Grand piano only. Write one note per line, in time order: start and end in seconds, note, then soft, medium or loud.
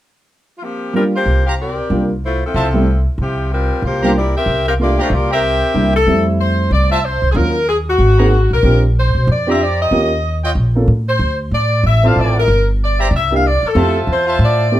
0.93 1.11 G3 soft
0.93 1.11 A#3 soft
0.93 1.12 D4 soft
0.93 1.12 F4 medium
1.90 2.08 G3 soft
1.90 2.08 A#3 soft
1.90 2.08 D4 soft
1.90 2.08 F4 medium
2.74 2.85 G3 medium
2.74 2.85 A3 medium
2.74 2.86 C4 soft
2.74 2.86 E4 medium
4.03 4.14 G3 medium
4.03 4.14 A#3 medium
4.03 4.14 D4 soft
4.03 4.14 F4 medium
4.79 4.97 A3 soft
4.79 4.97 A#3 soft
4.79 4.97 D4 soft
4.79 4.97 F4 medium
5.74 5.92 G3 medium
5.74 5.93 A#3 soft
5.74 5.93 D4 soft
5.74 5.93 E4 medium
6.07 6.96 G3 medium
6.07 6.96 A3 soft
6.07 6.96 C4 soft
6.07 6.96 E4 medium
7.35 7.53 F#3 soft
7.35 7.53 A#3 soft
7.35 7.53 C#4 soft
7.35 7.53 F4 medium
8.19 8.30 A#3 medium
8.19 8.30 C4 soft
8.19 8.30 D#4 soft
8.19 8.30 G#4 medium
8.64 8.81 C4 medium
8.64 8.81 D4 soft
8.64 8.81 F4 soft
8.64 8.81 G4 medium
9.47 9.58 C4 soft
9.47 9.58 D4 soft
9.47 9.58 F4 soft
9.47 9.59 G4 medium
9.92 10.09 A#3 medium
9.92 10.09 C#4 medium
9.92 10.09 F4 soft
9.92 10.09 G4 medium
10.75 10.86 A#3 soft
10.75 10.87 C#4 soft
10.75 10.87 F4 soft
10.75 10.87 A4 medium
12.03 12.45 C4 soft
12.03 12.45 E4 soft
12.03 12.46 F4 soft
12.03 12.46 A4 medium
13.31 13.42 A#3 medium
13.31 13.43 D4 medium
13.31 13.43 E4 soft
13.31 13.43 G4 medium
13.75 13.93 A3 soft
13.75 13.93 C4 soft
13.75 13.93 E4 soft
13.75 13.93 G4 medium
14.72 14.80 A3 medium
14.72 14.80 C4 soft
14.72 14.80 E4 soft
14.72 14.80 G4 medium